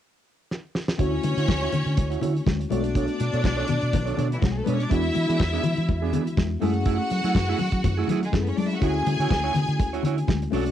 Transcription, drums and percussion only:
0.52 snare
0.75 snare
0.88 snare
0.99 kick, closed hi-hat
1.23 closed hi-hat, muted conga
1.38 closed hi-hat
1.48 kick, snare, high conga
1.63 closed hi-hat
1.72 closed hi-hat, low conga
1.86 closed hi-hat
1.97 kick, closed hi-hat, muted conga
2.12 closed hi-hat
2.21 closed hi-hat, low conga
2.37 closed hi-hat
2.46 kick, snare, high conga
2.61 closed hi-hat
2.70 closed hi-hat, high conga
2.84 closed hi-hat
2.95 kick, closed hi-hat
3.08 closed hi-hat
3.20 closed hi-hat, muted conga
3.33 closed hi-hat
3.44 kick, snare, high conga
3.67 closed hi-hat, low conga
3.81 closed hi-hat
3.93 kick, closed hi-hat, muted conga, low conga
4.07 closed hi-hat
4.17 closed hi-hat, low conga
4.32 closed hi-hat
4.42 kick, snare, high conga
4.66 closed hi-hat, high conga
4.80 closed hi-hat
4.91 kick, closed hi-hat
5.03 closed hi-hat
5.15 closed hi-hat, muted conga
5.30 closed hi-hat
5.39 kick, snare, high conga
5.63 closed hi-hat, muted conga, low conga
5.77 closed hi-hat
5.88 kick, closed hi-hat, muted conga
6.13 closed hi-hat, low conga
6.27 closed hi-hat
6.37 kick, snare, high conga
6.62 open hi-hat, high conga
6.74 closed hi-hat
6.86 kick, closed hi-hat
7.10 closed hi-hat, muted conga
7.24 closed hi-hat
7.35 kick, snare, high conga
7.59 open hi-hat, low conga
7.72 kick, closed hi-hat
7.84 kick, closed hi-hat, muted conga, low conga
8.08 closed hi-hat, low conga
8.23 closed hi-hat
8.33 kick, snare, high conga
8.47 closed hi-hat
8.57 open hi-hat, high conga
8.71 closed hi-hat
8.82 kick, closed hi-hat
9.06 closed hi-hat, muted conga
9.20 closed hi-hat
9.30 kick, snare, high conga
9.54 snare, closed hi-hat, low conga
9.68 closed hi-hat
9.79 kick, closed hi-hat, muted conga
9.94 closed hi-hat
10.03 closed hi-hat, low conga
10.18 closed hi-hat
10.27 kick, snare, high conga
10.42 closed hi-hat
10.52 open hi-hat, high conga
10.66 closed hi-hat

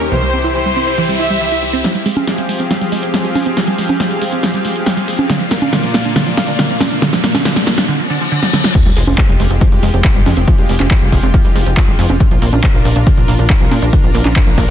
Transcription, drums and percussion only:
1.84 snare, closed hi-hat
1.95 closed hi-hat
2.06 open hi-hat
2.17 closed hi-hat, high conga
2.27 snare, closed hi-hat
2.38 closed hi-hat
2.49 open hi-hat
2.60 closed hi-hat
2.71 snare, closed hi-hat
2.81 closed hi-hat
2.92 open hi-hat
3.03 closed hi-hat
3.14 snare, closed hi-hat
3.25 closed hi-hat
3.35 open hi-hat, high conga
3.46 closed hi-hat
3.57 snare, closed hi-hat
3.68 closed hi-hat
3.78 open hi-hat
3.89 closed hi-hat, high conga
4.00 snare, closed hi-hat
4.11 closed hi-hat
4.21 open hi-hat
4.32 closed hi-hat
4.43 snare, closed hi-hat
4.54 closed hi-hat
4.65 open hi-hat
4.76 closed hi-hat
4.86 snare, closed hi-hat
4.97 closed hi-hat
5.08 open hi-hat
5.19 closed hi-hat, high conga
5.30 snare, closed hi-hat
5.40 closed hi-hat
5.51 snare, open hi-hat
5.62 closed hi-hat, high conga
5.73 snare, closed hi-hat
5.84 closed hi-hat
5.94 snare, open hi-hat
6.05 closed hi-hat
6.16 snare, closed hi-hat
6.27 closed hi-hat
6.37 snare, open hi-hat
6.48 closed hi-hat
6.59 snare, closed hi-hat
6.70 closed hi-hat
6.81 snare, open hi-hat, high conga
6.91 closed hi-hat
7.02 snare, closed hi-hat
7.13 snare, closed hi-hat
7.24 snare, open hi-hat
7.35 snare, high conga
7.45 snare, closed hi-hat
7.56 snare, closed hi-hat
7.67 snare, open hi-hat
7.78 snare, closed hi-hat
8.43 snare
8.53 snare
8.64 snare
8.75 kick, closed hi-hat, crash
8.86 closed hi-hat
8.97 open hi-hat
9.07 closed hi-hat, high conga
9.18 kick, clap, closed hi-hat
9.29 closed hi-hat
9.40 open hi-hat
9.51 closed hi-hat
9.61 kick, closed hi-hat
9.72 closed hi-hat
9.83 open hi-hat
9.94 closed hi-hat
10.04 kick, clap, closed hi-hat
10.15 closed hi-hat
10.26 open hi-hat, high conga
10.37 closed hi-hat
10.48 kick, closed hi-hat
10.58 closed hi-hat
10.69 open hi-hat
10.80 clap, closed hi-hat, high conga
10.91 kick, clap, closed hi-hat
11.02 closed hi-hat
11.12 kick, open hi-hat
11.23 closed hi-hat
11.34 kick, closed hi-hat
11.45 closed hi-hat
11.56 open hi-hat
11.66 closed hi-hat
11.77 kick, clap, closed hi-hat
11.88 closed hi-hat
11.99 open hi-hat
12.10 closed hi-hat, high conga
12.20 kick, closed hi-hat
12.31 closed hi-hat
12.42 open hi-hat
12.53 closed hi-hat, high conga
12.63 kick, clap, closed hi-hat
12.74 closed hi-hat
12.85 open hi-hat
12.96 closed hi-hat
13.07 kick, closed hi-hat
13.18 closed hi-hat
13.28 open hi-hat
13.39 closed hi-hat
13.50 kick, clap, closed hi-hat
13.61 closed hi-hat
13.71 open hi-hat, high conga
13.82 closed hi-hat
13.93 kick, closed hi-hat
14.04 closed hi-hat
14.15 open hi-hat
14.25 clap, closed hi-hat, high conga
14.36 kick, clap, closed hi-hat
14.47 closed hi-hat
14.58 kick, open hi-hat

